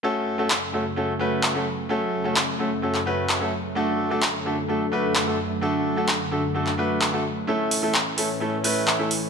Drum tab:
HH |----------------|----------------|----------------|----------------|
CP |----x-------x---|----x----x--x---|----x-------x---|----x----x--x---|

HH |--o---o---o---o-|
CP |----x-------x---|